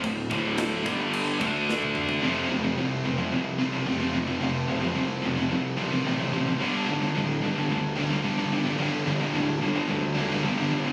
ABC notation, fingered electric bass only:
X:1
M:4/4
L:1/8
Q:1/4=110
K:F
V:1 name="Fingered electric bass" clef=bass
D,,, D,,,2 G,,,2 D,,3 | F,,, F,,, C,, F,,, C,,2 F,,,2 | F,,, F,,, C,, F,,, C,,2 A,,,2 | G,,, G,,, D,,, G,,, D,,2 G,,,2 |
G,,, G,,, D,,, G,,, D,,2 G,,,2 |]